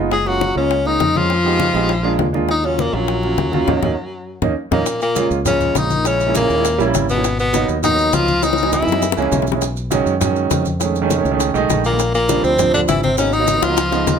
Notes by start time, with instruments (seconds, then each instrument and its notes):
Already playing: fingered electric bass F#1, grand piano G#3 B3 D#4 F4
0.11 baritone saxophone G#3, tenor saxophone G#4, high bongo, high conga
0.25 baritone saxophone F#3, grand piano G#3 A#3 C#4 F4, tenor saxophone F#4, high bongo, high conga
0.41 high bongo, high conga
0.55 fingered electric bass C#2, baritone saxophone C#3, grand piano G#3 A#3 C#4 F4, tenor saxophone C#4, high conga
0.71 high bongo, high conga
0.85 baritone saxophone D#3, grand piano G#3 A#3 C#4 D#4, tenor saxophone D#4, high bongo, high conga
1.00 fingered electric bass F2, high bongo, low bongo, high conga
1.15 baritone saxophone F3, grand piano G#3 A#3 C#4 F4, tenor saxophone F4, high bongo, high conga
1.30 high bongo
1.44 grand piano G#3 B3 D#4 G4, high conga
1.60 high bongo, high conga
1.73 fingered electric bass A#1, grand piano G#3 B3 D#4 G4, high bongo, high conga
1.89 high bongo, high conga
2.03 grand piano G#3 A#3 D4 F4, high bongo, high conga
2.19 fingered electric bass D#2, high bongo, low bongo, high conga
2.33 grand piano G#3 A#3 D4 F4, high bongo, high conga
2.49 baritone saxophone D#3, tenor saxophone D#4, high bongo, high conga
2.63 baritone saxophone C#3, grand piano F#3 A#3 C#4 F4, tenor saxophone C#4, high bongo, high conga
2.79 baritone saxophone A#2, tenor saxophone A#3, high bongo, high conga
2.93 fingered electric bass A#1, baritone saxophone F#2, grand piano F#3 A#3 C#4 F4, tenor saxophone F#3, high conga
3.08 high bongo, high conga
3.22 grand piano F#3 A#3 C#4 F4, high bongo, high conga
3.38 fingered electric bass D#2, high bongo, low bongo, high conga
3.52 grand piano F#3 A#3 C#4 F4, high bongo, high conga
3.68 fingered electric bass D#2, grand piano A#3 C#4 D#4, low bongo, low conga
3.82 fingered electric bass D#2, grand piano A#3 C#4 D#4, low bongo, low conga
4.42 fingered electric bass D#2, grand piano A#3 C#4 D#4, low bongo, low conga
4.71 fingered electric bass D#2, baritone saxophone A#2, grand piano A#3 C#4 D#4, tenor saxophone A#3, low bongo, low conga
4.86 high bongo, high conga, maracas
5.01 baritone saxophone A#2, tenor saxophone A#3, high conga, maracas
5.15 grand piano G#3 A#3 C#4 F4, high bongo, high conga, maracas
5.31 fingered electric bass C#2, high conga, maracas
5.45 baritone saxophone C#3, grand piano G#3 A#3 C#4 F4, tenor saxophone C#4, high bongo, high conga, low conga, maracas
5.61 high conga, low conga, maracas
5.75 fingered electric bass A#1, baritone saxophone D#3, tenor saxophone D#4, high bongo, low bongo, high conga, maracas
5.90 high conga, maracas
6.04 baritone saxophone C#3, grand piano G#3 A#3 C#4 E4, tenor saxophone C#4, high bongo, high conga, maracas
6.20 high bongo, high conga, maracas
6.26 grand piano G#3 A#3 C#4 E4
6.35 baritone saxophone A#2, tenor saxophone A#3, high bongo, high conga, maracas
6.41 grand piano G#3 A#3 C#4 E4
6.50 fingered electric bass D#2, high bongo, high conga, maracas
6.56 grand piano G#3 A#3 C#4 E4
6.65 high bongo, high conga, maracas
6.78 fingered electric bass A#1, grand piano G3 A#3 C#4 E4, high bongo, high conga, maracas
6.94 fingered electric bass G#1, high bongo, low bongo, high conga, maracas
7.09 baritone saxophone B2, tenor saxophone B3, high conga, maracas
7.16 grand piano G3 A#3 C#4 E4
7.24 high bongo, maracas
7.39 baritone saxophone B2, tenor saxophone B3, high conga, maracas
7.53 grand piano F#3 A#3 B3 D#4, high bongo, high conga, maracas
7.68 fingered electric bass D#2, high conga, maracas
7.82 baritone saxophone D#3, grand piano F#3 A#3 B3 D#4, tenor saxophone D#4, high bongo, high conga, low conga, maracas
7.98 high conga, maracas
8.13 fingered electric bass C#2, baritone saxophone F3, tenor saxophone F4, high bongo, low bongo, high conga, maracas
8.28 high conga, maracas
8.42 baritone saxophone D#3, grand piano E3 F#3 B3 D#4, tenor saxophone D#4, high bongo, high conga, maracas
8.53 high bongo
8.58 high conga, maracas
8.63 grand piano E3 F#3 B3 D#4, high bongo
8.72 baritone saxophone E3, tenor saxophone E4, high bongo, high conga, maracas
8.79 grand piano E3 F#3 B3 D#4, low bongo
8.87 fingered electric bass F#2, high conga, maracas
8.92 grand piano E3 F#3 B3 D#4, low bongo
9.02 low bongo, high conga, maracas
9.12 low bongo
9.17 fingered electric bass C#2, grand piano E3 G#3 A#3 C#4 G#5, high conga, maracas
9.22 low bongo
9.32 fingered electric bass B1, grand piano E5, low bongo, high conga, maracas
9.42 low bongo
9.47 high conga, maracas
9.52 grand piano E3 G#3 A#3 C#4, low bongo
9.62 high bongo, high conga, maracas
9.77 high conga, maracas
9.91 grand piano D#3 F#3 G#3 C#4, high bongo, high conga, maracas
10.06 fingered electric bass F#2, high conga, maracas
10.20 grand piano D#3 F#3 G#3 C#4, high bongo, high conga, low conga, maracas
10.36 high conga, maracas
10.51 fingered electric bass F2, high bongo, low bongo, high conga, maracas
10.66 high conga, maracas
10.80 grand piano D#3 G#3 A3 C#4, high bongo, high conga, maracas
10.96 high bongo, high conga, maracas
11.02 grand piano D#3 G#3 A3 C#4
11.10 high bongo, high conga, maracas
11.16 grand piano D#3 G#3 A3 C#4
11.25 fingered electric bass C#2, high bongo, high conga, maracas
11.31 grand piano D#3 G#3 A3 C#4
11.40 high bongo, high conga, maracas
11.54 fingered electric bass B1, grand piano D#3 G#3 A3 D#4, high bongo, high conga, maracas
11.70 fingered electric bass A#1, high bongo, low bongo, high conga, maracas
11.85 baritone saxophone A#2, tenor saxophone A#3, maracas
11.91 grand piano D#3 G#3 A3 B3
11.99 high bongo, maracas
12.14 baritone saxophone A#2, tenor saxophone A#3, high conga, maracas
12.28 grand piano F3 G3 C4 D4, high bongo, high conga, maracas
12.44 fingered electric bass D2, baritone saxophone C3, tenor saxophone C4, high conga, maracas
12.58 grand piano F3 G3 C4 D4, high bongo, high conga, low conga, maracas
12.74 baritone saxophone D3, tenor saxophone D4, high conga, low conga, maracas
12.88 fingered electric bass G#1, baritone saxophone E3, tenor saxophone E4, high bongo, low bongo, high conga, maracas
13.03 baritone saxophone C3, tenor saxophone C4, high conga, maracas
13.17 baritone saxophone C#3, grand piano F#3 A#3 B3 D#4, tenor saxophone C#4, high bongo, maracas
13.33 baritone saxophone D#3, tenor saxophone D#4, high bongo, high conga, maracas
13.39 grand piano F#3 A#3 B3 D#4
13.47 high bongo, high conga, maracas
13.54 grand piano F#3 A#3 B3 D#4
13.62 fingered electric bass C#2, baritone saxophone F3, tenor saxophone F4, high bongo, maracas
13.69 grand piano F#3 A#3 B3 D#4
13.77 high bongo, maracas
13.91 grand piano F3 G#3 B3 D#4, low bongo, high conga, maracas
14.07 fingered electric bass D#2, low bongo, high conga, maracas